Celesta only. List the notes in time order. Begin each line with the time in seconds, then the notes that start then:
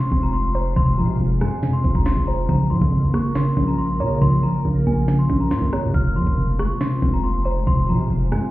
Already playing: C6
0.23 A#5
0.33 C6
0.54 A#5
0.77 C6
0.98 A#5
1.41 G#5
1.73 C6
1.95 A#5
2.06 C6
2.27 A#5
2.49 A#5
2.70 C6
3.14 C#6
3.36 C6
3.68 A#5
3.78 C6
4.01 A#5
4.22 C6
4.43 A#5
4.87 G#5
5.19 C6
5.40 A#5
5.51 C6
5.73 A#5
5.94 F6
6.16 C6
6.59 C#6
6.81 C6
7.14 A#5
7.24 C6
7.45 A#5
7.67 C6
7.89 A#5
8.32 G#5